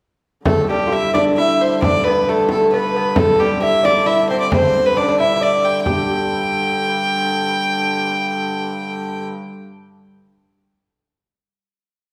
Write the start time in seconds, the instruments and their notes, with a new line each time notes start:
0.46 hurdy-gurdy G2 D3, lute A3, fiddle A4, frame drum
0.69 lute G3, fiddle G4
0.87 lute F4
0.92 lute E4, fiddle E5
1.14 lute D4, fiddle D5, frame drum
1.37 lute E4, fiddle E5
1.61 fiddle C5
1.82 lute D4, fiddle D5, frame drum
2.04 lute B3, fiddle B4, frame drum
2.29 lute A3, fiddle A4
2.49 fiddle A4, frame drum
2.72 lute B3, fiddle B4
2.96 lute B3
3.16 lute A3, fiddle A4, frame drum
3.39 lute G3, fiddle G4, frame drum
3.62 lute E4, fiddle E5
3.83 lute D4, fiddle D5, frame drum
4.06 lute E4, fiddle E5
4.30 lute C4, fiddle C5
4.41 fiddle D5
4.52 lute C4, fiddle C5, frame drum
4.86 fiddle B4
4.97 lute D4, fiddle D5
5.03 lute D4
5.08 lute D4
5.20 lute E4, fiddle E5
5.36 lute E4
5.40 lute D4, fiddle D5, frame drum
5.65 fiddle G5
5.83 hurdy-gurdy G2 D3, lute G4, fiddle G5, frame drum